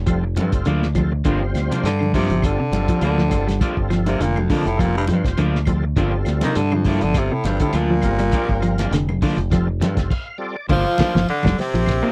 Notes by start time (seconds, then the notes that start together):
Already playing: F1
0.06 F3 G3 C4 F4 A4, kick, closed hi-hat, high conga, claves
0.24 muted clean electric guitar stroke
0.36 G2 F3 G3 C4 F4 A4, closed hi-hat, high conga
0.52 F1, muted clean electric guitar stroke, kick, closed hi-hat
0.65 D2 D3 F3 A#3 D4, closed hi-hat, high conga, claves
0.83 snare
0.95 F3 G3 C4 F4 A4, muted clean electric guitar stroke, kick, closed hi-hat, low conga, claves
1.12 muted clean electric guitar stroke
1.24 G1 D3 F3 G3 A#3 C4 D4 F4 C5, kick, closed hi-hat
1.42 muted clean electric guitar stroke
1.54 D2, snare, closed hi-hat, claves
1.71 C3 A#3 D4, closed hi-hat, high conga
1.83 G2 D3, muted clean electric guitar stroke, snare, closed hi-hat
1.99 D3, muted clean electric guitar stroke, high conga, claves
2.14 C3 F3 A#3 D4, kick, open hi-hat, high conga, low conga
2.29 G1 F3, muted clean electric guitar stroke, closed hi-hat
2.42 D3 G3 C4 F4 A4, kick, closed hi-hat, high conga, claves
2.58 C3, muted clean electric guitar stroke
2.72 G1 G3 C4 F4 A4, closed hi-hat, high conga
2.88 F3, muted clean electric guitar stroke, kick, closed hi-hat
3.01 D2 D3 F3 A#3 D4, closed hi-hat, high conga, claves
3.18 F3, snare
3.29 G1 G3 C4 F4 A4, muted clean electric guitar stroke, kick, closed hi-hat, low conga, claves
3.48 G3, muted clean electric guitar stroke, snare, closed hi-hat
3.59 F3 G3 A#3 C4 D4 F4 A4, kick, closed hi-hat, high conga
3.77 G1, muted clean electric guitar stroke, kick
3.90 F3, snare, closed hi-hat, claves
4.06 C3 A#3 D4, closed hi-hat, high conga
4.20 F1 A#2 D3, muted clean electric guitar stroke, closed hi-hat, high conga, low conga
4.36 D2, muted clean electric guitar stroke, high conga, claves
4.50 F2 D3 F3 A#3 D4, kick, open hi-hat, low conga
4.65 F1 A2, muted clean electric guitar stroke, closed hi-hat
4.77 A#2 F3 G3 C4 F4 A4, kick, closed hi-hat, high conga, claves
4.96 G2, muted clean electric guitar stroke
5.07 G2 F3 G3 C4 F4 C5, closed hi-hat, high conga
5.24 F1, muted clean electric guitar stroke, kick, snare, closed hi-hat
5.37 D2 D3 F3 A#3 D4, closed hi-hat, high conga, claves
5.55 snare
5.65 F3 G3 C4 F4 A4, muted clean electric guitar stroke, kick, closed hi-hat, low conga, claves
5.84 muted clean electric guitar stroke
5.96 G1 D3 F3 G3 A#3 C4 D4 F4 A4, kick, closed hi-hat, high conga
6.13 muted clean electric guitar stroke
6.25 D2, snare, closed hi-hat, claves
6.41 C3 D#3 A#3 D4, snare, closed hi-hat, high conga
6.55 G2 D3, muted clean electric guitar stroke, closed hi-hat, high conga, low conga
6.72 F2 D3, muted clean electric guitar stroke, high conga, claves
6.84 A2 F3 A#3 D4, kick, open hi-hat, high conga, low conga
7.01 G1 D3 F3, muted clean electric guitar stroke, closed hi-hat, high conga
7.14 C3 G3 C4 F4 A4, kick, snare, closed hi-hat, high conga, claves
7.32 A2 C3, muted clean electric guitar stroke
7.44 G1 G2 G3 C4 F4 A4, snare, closed hi-hat, high conga
7.60 A2 D3, muted clean electric guitar stroke, kick, closed hi-hat
7.73 D2 A#2 F3 D4, closed hi-hat, high conga, claves
7.91 F3
8.02 G1 G3 C4 F4 A#4, muted clean electric guitar stroke, kick, closed hi-hat, claves
8.06 low conga
8.19 G3, muted clean electric guitar stroke, closed hi-hat
8.32 F3 G3 A#3 C4 D4 F4 A#4, kick, closed hi-hat, high conga
8.49 G1, muted clean electric guitar stroke, kick
8.62 F3, closed hi-hat, claves
8.78 A#3 D4, snare, closed hi-hat, high conga
8.91 F1 D3, muted clean electric guitar stroke, snare, closed hi-hat, high conga, low conga
9.09 muted clean electric guitar stroke, high conga, claves
9.22 D3 F3 A#3 D4, kick, open hi-hat, high conga, low conga
9.37 F1, muted clean electric guitar stroke, closed hi-hat
9.50 F3 G3 C4 F4 A4, kick, snare, closed hi-hat, high conga, claves
9.67 muted clean electric guitar stroke
9.81 G2 F3 G3 C4 F4 A4, snare, closed hi-hat, high conga
9.97 F1, muted clean electric guitar stroke, kick, snare, closed hi-hat
10.10 F5, kick, crash
10.38 G3 C4 F4 A4 D5
10.69 G1 D3 F3 A#3 D4 F4, kick, ride bell, high conga, low conga
10.85 muted clean electric guitar stroke
10.98 F3 A#3 D4, muted fingered electric bass stroke, kick, snare, ride bell, high conga, claves
11.14 G1 F3, muted clean electric guitar stroke, snare
11.28 D3 D4, muted fingered electric bass stroke, ride bell, high conga
11.43 F1 G3, muted clean electric guitar stroke, kick, snare, high conga, claves
11.58 C3 C4, muted clean electric guitar stroke, snare, open hi-hat
11.74 A#1 F3, muted clean electric guitar stroke, ride bell
11.86 muted clean electric guitar stroke, kick, ride bell, high conga, claves
11.90 snare
12.03 F3 A#3 D4